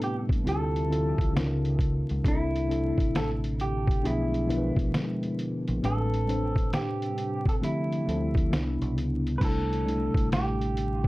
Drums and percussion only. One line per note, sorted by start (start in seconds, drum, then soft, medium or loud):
0.02 closed hi-hat medium
0.29 kick medium
0.29 closed hi-hat soft
0.47 closed hi-hat medium
0.76 closed hi-hat soft
0.92 closed hi-hat medium
1.18 kick medium
1.18 closed hi-hat soft
1.37 snare loud
1.37 closed hi-hat medium
1.65 closed hi-hat soft
1.79 kick medium
1.79 closed hi-hat medium
2.09 closed hi-hat soft
2.24 kick loud
2.24 closed hi-hat medium
2.56 closed hi-hat medium
2.71 closed hi-hat medium
2.98 kick medium
2.98 closed hi-hat soft
3.15 snare medium
3.15 closed hi-hat medium
3.44 closed hi-hat soft
3.60 closed hi-hat medium
3.87 kick medium
3.87 closed hi-hat soft
4.05 closed hi-hat medium
4.34 closed hi-hat soft
4.50 closed hi-hat medium
4.76 kick medium
4.76 closed hi-hat soft
4.94 snare loud
4.94 closed hi-hat medium
5.23 closed hi-hat soft
5.39 closed hi-hat medium
5.68 closed hi-hat soft
5.84 closed hi-hat medium
6.14 closed hi-hat soft
6.29 closed hi-hat medium
6.56 kick medium
6.56 closed hi-hat medium
6.73 snare medium
6.73 closed hi-hat medium
7.02 closed hi-hat soft
7.18 closed hi-hat medium
7.46 kick loud
7.46 closed hi-hat soft
7.63 closed hi-hat medium
7.92 closed hi-hat soft
8.09 closed hi-hat medium
8.35 kick medium
8.35 closed hi-hat soft
8.53 snare loud
8.53 closed hi-hat medium
8.82 closed hi-hat soft
8.98 closed hi-hat medium
9.27 closed hi-hat soft
9.41 kick loud
9.41 closed hi-hat medium
9.41 crash medium
9.73 closed hi-hat soft
9.88 closed hi-hat medium
10.14 kick loud
10.14 closed hi-hat soft
10.32 snare medium
10.32 closed hi-hat medium
10.62 closed hi-hat medium
10.77 closed hi-hat medium
11.04 kick medium